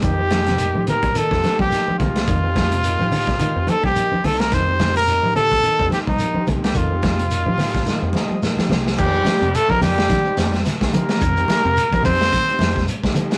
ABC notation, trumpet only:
X:1
M:4/4
L:1/16
Q:"Swing 16ths" 1/4=107
K:Fmix
V:1 name="Trumpet"
G6 B2 A3 G3 F2- | F8- F2 A G3 A B | c3 B3 A4 G E3 z G | F12 z4 |
G4 A B G6 z2 B2- | B6 c6 z4 |]